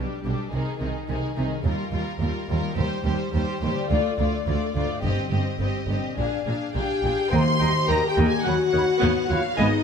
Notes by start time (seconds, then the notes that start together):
Already playing: B2 G3 D4 G4 D5 G5
0.00 D4 G4
0.24 B1 B2 G3 D4 G4
0.35 C3
0.39 D#4
0.44 G#4
0.48 D#3 G#4 C5
0.53 C2 C3 D#4
0.80 C2 C3 D#3 D#4 G#4
1.07 C2 C3 D#3 D#4 G#4
1.36 C2 C3 D#3 D#4 G#4
1.48 D#3
1.52 F4
1.57 G4
1.61 D#2 G3 A#4
1.66 F4 A#4
1.92 D#2 G3 F4 A#4
2.20 D#2 G3 F4 A#4
2.49 D#2 G3 F4 A#4
2.60 D#3 D#4
2.68 G4
2.73 D#2 G3 G4 C5
2.78 D#2 C5
3.05 D#2 G3 G4 C5
3.33 D#2 G3 G4 C5
3.62 D#2 G3 G4 C5
3.72 D3
3.76 F4
3.81 A4
3.85 D5
3.90 D2 A3 F4 D5
4.18 D2 A3 F4 D5
4.47 D2 A3 F4 D5
4.73 D2 A3 F4 D5
4.85 G2
4.89 D#4
4.93 G4
4.98 C5
5.02 G1 G2 C4 G4 D#5
5.31 G1 G2 C4 G4 D#5
5.59 G1 G2 C4 G4 D#5
5.87 G1 G2 C4 G4 D#5
5.99 A#2
6.04 F4
6.08 G#4
6.13 D5
6.17 A#1 A#2 D4 G#4 F5
6.45 A#1 A#2 D4 G#4 F5
6.73 A#1 A#2 D4 G4 G#4 F5 G5
7.03 A#1 A#2 D4 G#4 F5
7.31 D#2 D#3 A#3 G4 C5 D#5 G5 A#5 C6
7.47 D#4
7.59 D#2 G3 D#5 G5 A#5
7.76 D#5
7.87 D#2 D#3 A#4 D#5 G5 A#5
8.08 G4 G5
8.14 D#2 A#3 G5
8.18 D#5 A#5
8.27 G#4 G#5
8.32 D#5
8.44 D#2 D#3 F#3 F#4 C#5 F#5
8.48 F#5 B5
8.60 C#4
8.72 D#2 D#3 B4 C#5 F#5 B5
8.87 C#5
9.00 D#2 B3 C#5 F#5 B5
9.16 B5
9.29 D#2 F#3 F4 C#5 F5 F#5 B5
9.44 C#5
9.57 G#1 G#2 B3 D#4 G#4 D#5 G#5 B5
9.61 D#5
9.74 G#3